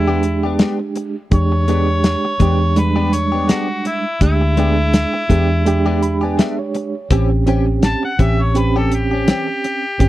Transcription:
Already playing: fingered electric bass E2, reed electric piano G#3 D4 G4, harmonica E4
0.08 clean electric guitar G#3 B3 D4 G4
0.23 muted clean electric guitar stroke, closed hi-hat
0.43 clean electric guitar B3 D4 G4
0.59 clean electric guitar G#3 B3 D4 G4, snare, closed hi-hat
0.79 muted clean electric guitar stroke
0.95 muted clean electric guitar stroke, closed hi-hat
1.31 fingered electric bass E2, reed electric piano G#3 D4 G4, harmonica C#5, kick, closed hi-hat
1.52 muted clean electric guitar stroke
1.68 reed electric piano G#3 D4 G4, clean electric guitar G#3 B3 D4 G4, closed hi-hat
2.04 snare, closed hi-hat
2.25 muted clean electric guitar stroke
2.39 fingered electric bass E2, clean electric guitar G#3 B3 D4 G4, reed electric piano G#3 D4 G4, kick, closed hi-hat
2.76 reed electric piano G3 G#3 D4, harmonica B4, muted clean electric guitar stroke, closed hi-hat
2.96 clean electric guitar G#3 B3 D4 G4
3.12 harmonica C#5, muted clean electric guitar stroke, closed hi-hat
3.32 clean electric guitar B3 D4 G4
3.48 clean electric guitar G#3 B3 D4 G4, harmonica F#4, snare, closed hi-hat
3.69 muted clean electric guitar stroke
3.85 harmonica E4, muted clean electric guitar stroke, closed hi-hat
4.21 fingered electric bass D2, reed electric piano G#3 D4 G4, harmonica E4, kick, closed hi-hat
4.41 muted clean electric guitar stroke
4.57 reed electric piano G#3 D4 G#4, clean electric guitar G#3 B3 D4 G4, closed hi-hat
4.79 muted clean electric guitar stroke
4.94 snare, closed hi-hat
5.13 muted clean electric guitar stroke
5.29 fingered electric bass E2, reed electric piano G#3 D4 G4, clean electric guitar G#3 B3 D4 G4, kick, closed hi-hat
5.50 muted clean electric guitar stroke
5.66 reed electric piano G#3 D4 G4, muted clean electric guitar stroke, closed hi-hat
5.86 clean electric guitar G#3 B3 D4 G4
6.03 reed electric piano B5, closed hi-hat
6.21 clean electric guitar B3 D4 G4, reed electric piano G#5
6.37 clean electric guitar G#3 B3 D4 G4, reed electric piano E5, snare, closed hi-hat
6.58 reed electric piano C#5, muted clean electric guitar stroke
6.75 muted clean electric guitar stroke, closed hi-hat
7.10 fingered electric bass A1, clean electric guitar E3 C4 C#4 G4, reed electric piano C4 C#4 G4, kick, closed hi-hat
7.31 muted clean electric guitar stroke
7.46 clean electric guitar E3 C4 C#4 G4, reed electric piano C4 C#4 G4, closed hi-hat
7.67 muted clean electric guitar stroke
7.83 harmonica A5, snare, closed hi-hat
8.03 harmonica F#5, muted clean electric guitar stroke
8.18 fingered electric bass A1, clean electric guitar E3 C4 C#4 G4, reed electric piano C4 C#4 G4, harmonica E5, kick, closed hi-hat
8.39 harmonica C#5, muted clean electric guitar stroke
8.54 reed electric piano C4 C#4 G4, harmonica B4, muted clean electric guitar stroke, closed hi-hat
8.76 clean electric guitar E3 C4 C#4 G4, harmonica A4
8.92 harmonica G4, muted clean electric guitar stroke, closed hi-hat
9.11 clean electric guitar C4 C#4 G4
9.27 clean electric guitar E3 C4 C#4 G4, snare, closed hi-hat
9.48 muted clean electric guitar stroke
9.64 muted clean electric guitar stroke, closed hi-hat
9.99 fingered electric bass G1, reed electric piano C4 C#4 G4, kick, closed hi-hat

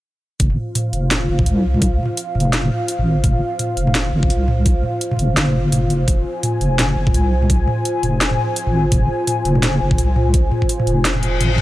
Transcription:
0.40 wobble bass F1, analog synth pad F4 C5 F5, kick, closed hi-hat
0.50 mid tom
0.75 closed hi-hat, mid tom
0.93 wobble bass F1, closed hi-hat
1.11 snare, closed hi-hat, mid tom
1.29 wobble bass F#1
1.39 kick, mid tom
1.46 wobble bass C2, closed hi-hat
1.74 mid tom
1.82 kick, closed hi-hat
2.00 mid tom
2.03 mid tom
2.06 mid tom
2.17 closed hi-hat
2.35 wobble bass F1, mid tom
2.40 closed hi-hat
2.53 snare, closed hi-hat
2.63 mid tom
2.88 closed hi-hat
2.99 wobble bass G#1, mid tom
3.24 wobble bass F1, kick, closed hi-hat, mid tom
3.59 closed hi-hat, mid tom
3.77 wobble bass F1, closed hi-hat
3.87 mid tom
3.95 snare, closed hi-hat
4.13 wobble bass F#1
4.23 kick, mid tom
4.30 wobble bass C2, closed hi-hat
4.48 mid tom
4.66 kick, closed hi-hat
4.83 mid tom
5.01 closed hi-hat
5.11 mid tom
5.13 mid tom
5.17 wobble bass F1, closed hi-hat, mid tom
5.37 wobble bass F#1, snare, closed hi-hat
5.47 mid tom
5.72 closed hi-hat, mid tom
5.90 closed hi-hat
6.08 wobble bass F1, analog synth pad G#5, kick, closed hi-hat
6.43 closed hi-hat, mid tom
6.61 wobble bass F1, closed hi-hat
6.79 snare, closed hi-hat, mid tom
6.96 wobble bass F#1
7.07 kick, mid tom
7.14 wobble bass C2, closed hi-hat
7.42 mid tom
7.50 kick, closed hi-hat
7.68 mid tom
7.85 closed hi-hat
8.03 wobble bass F1, closed hi-hat, mid tom
8.21 snare, closed hi-hat
8.31 mid tom
8.56 closed hi-hat
8.67 wobble bass G#1, mid tom
8.92 wobble bass F1, kick, closed hi-hat, mid tom
9.27 closed hi-hat, mid tom
9.45 wobble bass F1, closed hi-hat
9.55 mid tom
9.63 snare, closed hi-hat
9.81 wobble bass F#1
9.91 kick, mid tom
9.98 wobble bass C2, closed hi-hat
10.16 mid tom
10.34 kick, closed hi-hat
10.52 mid tom
10.62 kick
10.69 closed hi-hat
10.80 mid tom
10.87 wobble bass F1, closed hi-hat
11.05 snare, closed hi-hat, reverse cymbal
11.15 mid tom
11.23 closed hi-hat
11.40 wobble bass G#1, closed hi-hat, mid tom
11.58 wobble bass C2, kick

